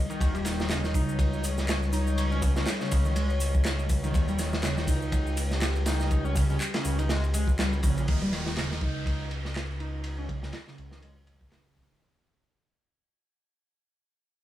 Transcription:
Already playing: ambient pad G3 D#4 D#5
0.10 analog synth lead D#3, ride, shaker
0.20 analog synth bass D#1, analog synth lead D#3, ambient pad C#5, kick, ride, shaker
0.34 analog synth lead G3, ride, shaker
0.45 analog synth lead D#3, snare, open hi-hat, ride, shaker
0.59 analog synth lead D#3, snare, shaker
0.70 analog synth lead C#3, snare, clap, ride, shaker
0.84 analog synth lead D#3, snare, shaker
0.94 analog synth bass C#2, analog synth lead D#4, kick, open hi-hat, ride, shaker
1.09 shaker
1.19 kick, ride, shaker
1.33 shaker
1.44 open hi-hat, ride, shaker
1.58 snare, shaker
1.68 snare, clap, ride, shaker
1.83 shaker
1.93 analog synth lead D#4, open hi-hat, ride, shaker
2.07 shaker
2.18 ride, shaker
2.32 analog synth lead C#4, shaker
2.42 analog synth lead C#3, kick, open hi-hat, ride, shaker
2.56 analog synth lead C#3, snare, shaker
2.66 snare, clap, ride, shaker
2.81 analog synth lead C#3, snare, shaker
2.91 analog synth bass C#2, kick, open hi-hat, ride, shaker
3.05 analog synth lead D#3, shaker
3.16 analog synth lead G#3, ride, shaker
3.30 shaker
3.40 open hi-hat, ride, shaker
3.54 kick, shaker
3.64 snare, clap, ride, shaker
3.79 shaker
3.89 kick, open hi-hat, ride, shaker
4.03 analog synth lead D#3, ride, shaker
4.14 analog synth bass D#1, analog synth lead D#3, ambient pad G4, kick, ride, shaker
4.28 analog synth lead G3, ride, shaker
4.39 analog synth lead D#3, snare, open hi-hat, ride, shaker
4.53 analog synth lead D#3, snare, shaker
4.63 analog synth lead C#3, snare, clap, ride, shaker
4.77 analog synth lead D#3, snare, shaker
4.87 analog synth bass C#2, analog synth lead D#4, kick, open hi-hat, ride, shaker
5.02 shaker
5.12 kick, ride, shaker
5.27 shaker
5.37 open hi-hat, ride, shaker
5.51 snare, shaker
5.61 snare, clap, ride, shaker
5.76 shaker
5.86 analog synth lead D#4, snare, open hi-hat, ride, shaker
6.00 snare, shaker
6.11 kick, ride, shaker
6.25 analog synth lead C#4, shaker
6.35 analog synth lead C#3, kick, open hi-hat, ride, shaker
6.50 analog synth lead C#3, shaker
6.60 clap, ride, shaker
6.74 analog synth lead C#3, snare, ride, shaker
6.85 analog synth bass C#2, open hi-hat, shaker
6.99 analog synth lead D#3, ride, shaker
7.09 analog synth lead G#3, snare, ride, shaker
7.24 shaker
7.34 analog synth lead G#3, open hi-hat, ride, shaker
7.48 kick, shaker
7.59 analog synth lead G3, snare, clap, ride, shaker
7.73 shaker
7.83 analog synth bass A#1, analog synth lead C#3, kick, open hi-hat, ride, shaker
7.97 analog synth bass A#1, analog synth lead C#3, ride, shaker
8.08 analog synth bass D#1, analog synth lead D#3, kick, ride, downlifter
8.21 analog synth lead G3, ride
8.32 analog synth lead D#3, snare, ride
8.46 analog synth lead D#3, snare
8.56 analog synth lead C#3, snare, clap, ride
8.71 analog synth lead D#3, snare
8.81 analog synth bass C#2, analog synth lead D#4, kick, ride
9.06 kick, ride
9.31 ride
9.45 snare
9.55 snare, clap, ride
9.80 analog synth lead D#4, ride
10.04 ride
10.18 analog synth lead C#4
10.29 analog synth lead C#3, kick, ride
10.43 analog synth lead C#3, snare
10.53 snare, clap, ride
10.67 analog synth lead C#3, snare
10.78 analog synth bass C#2, ride
10.91 analog synth lead D#3, snare
11.02 analog synth lead G#3, ride
11.27 ride
11.41 kick
11.52 snare, clap, ride
11.77 kick, ride
11.90 analog synth lead D#3, ride

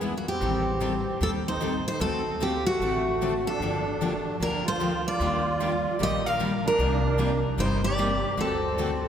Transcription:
Already playing: upright bass E2, accordion B3, steel-string acoustic guitar G#4
0.01 steel-string acoustic guitar D3 G#3 B3 E4 G#4
0.17 accordion A#3, steel-string acoustic guitar F#4
0.28 accordion C4, steel-string acoustic guitar G4
0.41 upright bass A1, steel-string acoustic guitar D#3 G3 C4 G4 A4
0.80 steel-string acoustic guitar D#3 G3 C4 G4 A4
1.20 upright bass D#2, steel-string acoustic guitar D#3 G3 C4 G4 A4, accordion C4
1.48 accordion D#4, steel-string acoustic guitar C5
1.61 steel-string acoustic guitar D#3 G3 C4 G4 A4
1.88 accordion D#4, steel-string acoustic guitar C5
2.00 upright bass D2, steel-string acoustic guitar D3 A3 C4 F#4 A4, accordion C4
2.40 steel-string acoustic guitar D3 A3 C4 F#4 G4 A4, accordion A#3
2.66 accordion A3, steel-string acoustic guitar F#4
2.80 upright bass A1, steel-string acoustic guitar D3 A3 C4 F#4 A4
3.22 steel-string acoustic guitar D3 A3 C4 F#4 A4
3.45 accordion D4, steel-string acoustic guitar A4
3.60 upright bass G1, steel-string acoustic guitar D3 F3 A#3 D4 G4
4.01 steel-string acoustic guitar D3 F3 A#3 D4 G4
4.39 upright bass D2, steel-string acoustic guitar D3 F3 A#3 D4 G4 A#4, accordion D4
4.64 accordion F4, steel-string acoustic guitar C5
4.80 steel-string acoustic guitar D3 F3 A#3 D4 G4
5.06 accordion F4, steel-string acoustic guitar D5
5.20 upright bass D#2, steel-string acoustic guitar D#3 G3 A#3 D4 G4
5.60 steel-string acoustic guitar D#3 G3 A#3 D4 G4
5.99 upright bass A#1, steel-string acoustic guitar D#3 G3 A#3 D4 G4, accordion G4
6.03 steel-string acoustic guitar D#5
6.24 accordion A#4, steel-string acoustic guitar F5
6.39 steel-string acoustic guitar D#3 G3 A#3 D4 G4
6.64 accordion D4, steel-string acoustic guitar A#4
6.78 upright bass C2, steel-string acoustic guitar C3 G3 A#3 D#4 G4
7.18 steel-string acoustic guitar C3 G3 A#3 D#4 G4
7.58 upright bass G1, steel-string acoustic guitar C3 G3 A#3 D#4 G4 C5, accordion D#4
7.84 accordion G4, steel-string acoustic guitar D5
7.98 steel-string acoustic guitar C3 G3 A#3 D#4 G4
8.37 upright bass D2, steel-string acoustic guitar D3 A3 C4 F#4 A4, accordion C4
8.78 steel-string acoustic guitar D3 A3 C4 F#4 A4

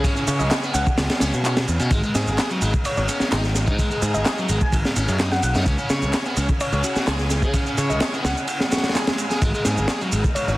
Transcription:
Already playing: string section C#3 C#4 E4 G#4
0.04 overdriven electric guitar C#4, kick, ride, shaker
0.17 overdriven electric guitar C#4, shaker
0.28 picked electric bass C#3, overdriven electric guitar C#5, ride, shaker
0.39 picked electric bass C#2, synth pluck D#5, shaker
0.50 synth pluck D#5, snare, clap, ride, shaker
0.63 overdriven electric guitar B3, shaker
0.74 picked electric bass C#2, overdriven electric guitar C#4, synth pluck F#5, ride, shaker
0.87 kick, shaker
0.98 picked electric bass C#2, snare, ride, shaker
1.09 snare, ride, shaker
1.20 picked electric bass C#2, overdriven electric guitar C#4, snare, ride, shaker
1.34 picked electric bass B2, shaker
1.44 overdriven electric guitar C#4, clap, ride, shaker
1.57 snare, ride, shaker
1.68 picked electric bass E2, shaker
1.79 picked electric bass B2, overdriven electric guitar C#4, ride, shaker
1.91 picked electric bass G#1, string section G#3 B3 D#4, overdriven electric guitar G#3, kick, ride, shaker
2.04 overdriven electric guitar G#3, shaker
2.15 picked electric bass G#2, overdriven electric guitar G#4, snare, ride, shaker
2.27 picked electric bass G#1, shaker
2.38 snare, clap, ride, shaker
2.50 overdriven electric guitar F#3, shaker
2.62 picked electric bass G#1, overdriven electric guitar G#3, ride, shaker
2.74 kick, shaker
2.85 synth pluck C#5, muted picked electric bass stroke, ride, shaker
2.97 picked electric bass G#1, synth pluck C#5, shaker
3.08 overdriven electric guitar C#4, ride, shaker
3.20 muted picked electric bass stroke, snare, shaker
3.32 picked electric bass G#1, overdriven electric guitar D#4, snare, clap, ride, shaker
3.44 snare, shaker
3.55 snare, ride, shaker
3.68 picked electric bass G#2, overdriven electric guitar D#4, kick, shaker
3.79 overdriven electric guitar G#3, kick, ride, shaker
3.91 overdriven electric guitar G#3, shaker
4.02 picked electric bass G#2, overdriven electric guitar G#4, ride, shaker
4.14 picked electric bass G#1, synth pluck D#5, shaker
4.26 synth pluck D#5, snare, clap, ride, shaker
4.38 overdriven electric guitar F#3, shaker
4.49 picked electric bass G#1, overdriven electric guitar G#3, ride, shaker
4.61 synth pluck G#5, kick, shaker
4.72 picked electric bass G#1, kick, ride, shaker
4.85 snare, shaker
4.96 picked electric bass G#1, overdriven electric guitar C#4, ride, shaker
5.08 picked electric bass F#2, ride, shaker
5.20 overdriven electric guitar D#4, snare, clap, ride, shaker
5.32 synth pluck F#5, snare, shaker
5.43 picked electric bass B1, synth pluck F#5, ride, shaker
5.55 picked electric bass F#2, overdriven electric guitar D#4, snare, shaker
5.66 picked electric bass C#2, string section C#3 C#4 E4 G#4, overdriven electric guitar C#4, kick, ride, shaker
5.78 overdriven electric guitar C#4, shaker
5.90 picked electric bass C#3, overdriven electric guitar C#5, snare, ride, shaker
6.02 picked electric bass C#2, shaker
6.13 snare, clap, ride, shaker
6.25 overdriven electric guitar B3, shaker
6.37 picked electric bass C#2, overdriven electric guitar C#4, ride, shaker
6.49 kick, shaker
6.60 synth pluck C#5, muted picked electric bass stroke, ride, shaker
6.72 picked electric bass C#2, synth pluck C#5, shaker
6.84 overdriven electric guitar F#4, ride, shaker
6.96 muted picked electric bass stroke, snare, shaker
7.07 picked electric bass C#2, overdriven electric guitar G#4, snare, clap, ride, shaker
7.19 snare, shaker
7.30 snare, ride, shaker
7.42 picked electric bass C#3, overdriven electric guitar G#4, kick, shaker
7.53 overdriven electric guitar C#4, kick, ride, shaker
7.66 overdriven electric guitar C#4, shaker
7.78 picked electric bass C#3, overdriven electric guitar C#5, ride, shaker
7.89 picked electric bass C#2, synth pluck D#5, shaker
8.00 synth pluck D#5, snare, clap, ride, shaker
8.14 overdriven electric guitar B3, shaker
8.24 picked electric bass C#2, overdriven electric guitar C#4, synth pluck F#5, snare, ride, shaker
8.37 shaker
8.47 ride, swell, shaker
8.60 snare, shaker
8.72 overdriven electric guitar F#4, snare, ride, shaker
8.77 snare, ride
8.84 snare, ride, shaker
8.89 snare, ride
8.95 overdriven electric guitar G#4, snare, clap, ride, shaker
9.07 snare, ride, shaker
9.18 ride, shaker
9.30 overdriven electric guitar G#4, snare, shaker
9.42 picked electric bass G#1, overdriven electric guitar G#3, string section G#3 B3 D#4, kick, ride, shaker
9.54 overdriven electric guitar G#3, shaker
9.65 picked electric bass G#2, overdriven electric guitar G#4, snare, ride, shaker
9.77 picked electric bass G#1, shaker
9.88 snare, clap, ride, shaker
10.01 overdriven electric guitar F#3, shaker
10.12 picked electric bass G#1, overdriven electric guitar G#3, ride, shaker
10.24 kick, shaker
10.35 synth pluck C#5, muted picked electric bass stroke, ride, shaker
10.48 picked electric bass G#1, synth pluck C#5, shaker

